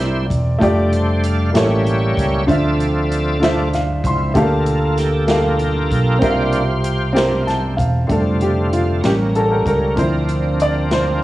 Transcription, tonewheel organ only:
0, 0, Header, 1, 2, 480
1, 0, Start_track
1, 0, Key_signature, -1, "major"
1, 0, Tempo, 624350
1, 474, Time_signature, 6, 3, 24, 8
1, 8637, End_track
2, 0, Start_track
2, 0, Title_t, "Tonewheel organ"
2, 0, Program_c, 0, 16
2, 0, Note_on_c, 0, 64, 60
2, 0, Note_on_c, 0, 67, 64
2, 0, Note_on_c, 0, 72, 96
2, 203, Note_off_c, 0, 64, 0
2, 203, Note_off_c, 0, 67, 0
2, 207, Note_off_c, 0, 72, 0
2, 458, Note_on_c, 0, 57, 48
2, 462, Note_on_c, 0, 55, 47
2, 465, Note_on_c, 0, 62, 59
2, 718, Note_on_c, 0, 72, 77
2, 959, Note_on_c, 0, 77, 93
2, 963, Note_off_c, 0, 72, 0
2, 1154, Note_off_c, 0, 57, 0
2, 1156, Note_off_c, 0, 55, 0
2, 1157, Note_off_c, 0, 62, 0
2, 1184, Note_on_c, 0, 55, 40
2, 1191, Note_on_c, 0, 58, 44
2, 1192, Note_on_c, 0, 67, 58
2, 1194, Note_on_c, 0, 73, 57
2, 1197, Note_on_c, 0, 61, 44
2, 1203, Note_off_c, 0, 77, 0
2, 1203, Note_on_c, 0, 76, 83
2, 1877, Note_off_c, 0, 55, 0
2, 1880, Note_off_c, 0, 58, 0
2, 1881, Note_off_c, 0, 67, 0
2, 1881, Note_off_c, 0, 73, 0
2, 1883, Note_off_c, 0, 61, 0
2, 1886, Note_off_c, 0, 76, 0
2, 1901, Note_on_c, 0, 53, 52
2, 1901, Note_on_c, 0, 60, 52
2, 1905, Note_on_c, 0, 65, 51
2, 1905, Note_on_c, 0, 76, 57
2, 1908, Note_on_c, 0, 69, 58
2, 1923, Note_on_c, 0, 74, 78
2, 2594, Note_off_c, 0, 53, 0
2, 2595, Note_off_c, 0, 60, 0
2, 2597, Note_off_c, 0, 76, 0
2, 2836, Note_off_c, 0, 65, 0
2, 2837, Note_off_c, 0, 69, 0
2, 2845, Note_off_c, 0, 74, 0
2, 3110, Note_on_c, 0, 53, 41
2, 3110, Note_on_c, 0, 60, 35
2, 3111, Note_on_c, 0, 64, 48
2, 3326, Note_off_c, 0, 53, 0
2, 3326, Note_off_c, 0, 60, 0
2, 3327, Note_off_c, 0, 64, 0
2, 3337, Note_on_c, 0, 69, 51
2, 3342, Note_on_c, 0, 58, 51
2, 3348, Note_on_c, 0, 65, 63
2, 3583, Note_off_c, 0, 65, 0
2, 3592, Note_on_c, 0, 65, 74
2, 3831, Note_on_c, 0, 67, 88
2, 3838, Note_off_c, 0, 65, 0
2, 4056, Note_off_c, 0, 67, 0
2, 4065, Note_on_c, 0, 67, 51
2, 4069, Note_on_c, 0, 65, 57
2, 4074, Note_on_c, 0, 70, 77
2, 4752, Note_off_c, 0, 69, 0
2, 4754, Note_off_c, 0, 58, 0
2, 4756, Note_off_c, 0, 67, 0
2, 4758, Note_off_c, 0, 65, 0
2, 4774, Note_on_c, 0, 58, 56
2, 4777, Note_on_c, 0, 72, 103
2, 4778, Note_on_c, 0, 67, 64
2, 4780, Note_on_c, 0, 62, 53
2, 4781, Note_on_c, 0, 65, 68
2, 4813, Note_off_c, 0, 70, 0
2, 5101, Note_off_c, 0, 58, 0
2, 5104, Note_off_c, 0, 62, 0
2, 5484, Note_off_c, 0, 65, 0
2, 5492, Note_on_c, 0, 58, 42
2, 5492, Note_on_c, 0, 62, 37
2, 5493, Note_on_c, 0, 65, 42
2, 5716, Note_off_c, 0, 58, 0
2, 5716, Note_off_c, 0, 62, 0
2, 5717, Note_off_c, 0, 65, 0
2, 5952, Note_off_c, 0, 72, 0
2, 5953, Note_off_c, 0, 67, 0
2, 6203, Note_on_c, 0, 60, 51
2, 6205, Note_on_c, 0, 65, 62
2, 6207, Note_on_c, 0, 57, 50
2, 6210, Note_on_c, 0, 50, 58
2, 6927, Note_on_c, 0, 58, 40
2, 6929, Note_off_c, 0, 60, 0
2, 6929, Note_on_c, 0, 55, 51
2, 6929, Note_on_c, 0, 70, 54
2, 6930, Note_off_c, 0, 65, 0
2, 6930, Note_on_c, 0, 61, 44
2, 6931, Note_off_c, 0, 57, 0
2, 6933, Note_off_c, 0, 50, 0
2, 7651, Note_off_c, 0, 58, 0
2, 7652, Note_off_c, 0, 55, 0
2, 7653, Note_off_c, 0, 61, 0
2, 7653, Note_on_c, 0, 62, 53
2, 7655, Note_on_c, 0, 60, 53
2, 7659, Note_on_c, 0, 53, 61
2, 8637, Note_off_c, 0, 53, 0
2, 8637, Note_off_c, 0, 60, 0
2, 8637, Note_off_c, 0, 62, 0
2, 8637, Note_off_c, 0, 70, 0
2, 8637, End_track
0, 0, End_of_file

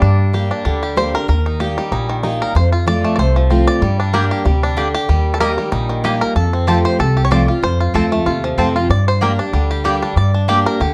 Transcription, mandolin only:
0, 0, Header, 1, 2, 480
1, 0, Start_track
1, 0, Key_signature, -2, "minor"
1, 0, Tempo, 317125
1, 32, Time_signature, 4, 2, 24, 8
1, 16556, End_track
2, 0, Start_track
2, 0, Title_t, "Mandolin"
2, 0, Program_c, 0, 25
2, 6258, Note_on_c, 0, 58, 93
2, 6262, Note_on_c, 0, 67, 102
2, 6267, Note_on_c, 0, 74, 97
2, 6273, Note_on_c, 0, 79, 101
2, 6411, Note_off_c, 0, 58, 0
2, 6414, Note_off_c, 0, 67, 0
2, 6416, Note_off_c, 0, 74, 0
2, 6419, Note_off_c, 0, 79, 0
2, 7215, Note_on_c, 0, 58, 76
2, 7222, Note_on_c, 0, 67, 98
2, 7228, Note_on_c, 0, 74, 84
2, 7231, Note_on_c, 0, 79, 89
2, 7370, Note_off_c, 0, 58, 0
2, 7373, Note_off_c, 0, 67, 0
2, 7376, Note_off_c, 0, 74, 0
2, 7378, Note_off_c, 0, 79, 0
2, 8181, Note_on_c, 0, 58, 97
2, 8184, Note_on_c, 0, 67, 94
2, 8192, Note_on_c, 0, 75, 109
2, 8196, Note_on_c, 0, 82, 107
2, 8333, Note_off_c, 0, 58, 0
2, 8335, Note_off_c, 0, 67, 0
2, 8338, Note_off_c, 0, 75, 0
2, 8341, Note_off_c, 0, 82, 0
2, 9140, Note_on_c, 0, 58, 95
2, 9144, Note_on_c, 0, 67, 80
2, 9150, Note_on_c, 0, 75, 83
2, 9155, Note_on_c, 0, 82, 90
2, 9292, Note_off_c, 0, 58, 0
2, 9295, Note_off_c, 0, 67, 0
2, 9297, Note_off_c, 0, 75, 0
2, 9300, Note_off_c, 0, 82, 0
2, 10097, Note_on_c, 0, 60, 86
2, 10106, Note_on_c, 0, 65, 94
2, 10109, Note_on_c, 0, 72, 99
2, 10112, Note_on_c, 0, 81, 106
2, 10251, Note_off_c, 0, 60, 0
2, 10255, Note_off_c, 0, 65, 0
2, 10257, Note_off_c, 0, 72, 0
2, 10259, Note_off_c, 0, 81, 0
2, 11059, Note_on_c, 0, 60, 83
2, 11067, Note_on_c, 0, 65, 94
2, 11071, Note_on_c, 0, 72, 83
2, 11075, Note_on_c, 0, 81, 94
2, 11212, Note_off_c, 0, 60, 0
2, 11216, Note_off_c, 0, 65, 0
2, 11218, Note_off_c, 0, 72, 0
2, 11220, Note_off_c, 0, 81, 0
2, 12019, Note_on_c, 0, 60, 90
2, 12025, Note_on_c, 0, 65, 88
2, 12032, Note_on_c, 0, 72, 103
2, 12035, Note_on_c, 0, 81, 98
2, 12172, Note_off_c, 0, 60, 0
2, 12176, Note_off_c, 0, 65, 0
2, 12179, Note_off_c, 0, 72, 0
2, 12180, Note_off_c, 0, 81, 0
2, 12981, Note_on_c, 0, 60, 84
2, 12987, Note_on_c, 0, 65, 91
2, 12993, Note_on_c, 0, 72, 101
2, 12998, Note_on_c, 0, 81, 92
2, 13134, Note_off_c, 0, 60, 0
2, 13137, Note_off_c, 0, 65, 0
2, 13140, Note_off_c, 0, 72, 0
2, 13142, Note_off_c, 0, 81, 0
2, 13941, Note_on_c, 0, 58, 96
2, 13948, Note_on_c, 0, 67, 95
2, 13953, Note_on_c, 0, 74, 109
2, 13958, Note_on_c, 0, 79, 105
2, 14094, Note_off_c, 0, 58, 0
2, 14098, Note_off_c, 0, 67, 0
2, 14100, Note_off_c, 0, 74, 0
2, 14103, Note_off_c, 0, 79, 0
2, 14898, Note_on_c, 0, 58, 81
2, 14906, Note_on_c, 0, 67, 96
2, 14910, Note_on_c, 0, 74, 92
2, 14915, Note_on_c, 0, 79, 103
2, 15053, Note_off_c, 0, 58, 0
2, 15058, Note_off_c, 0, 67, 0
2, 15060, Note_off_c, 0, 74, 0
2, 15062, Note_off_c, 0, 79, 0
2, 15863, Note_on_c, 0, 58, 94
2, 15870, Note_on_c, 0, 67, 102
2, 15874, Note_on_c, 0, 74, 107
2, 15880, Note_on_c, 0, 79, 95
2, 16017, Note_off_c, 0, 58, 0
2, 16020, Note_off_c, 0, 67, 0
2, 16022, Note_off_c, 0, 74, 0
2, 16025, Note_off_c, 0, 79, 0
2, 16556, End_track
0, 0, End_of_file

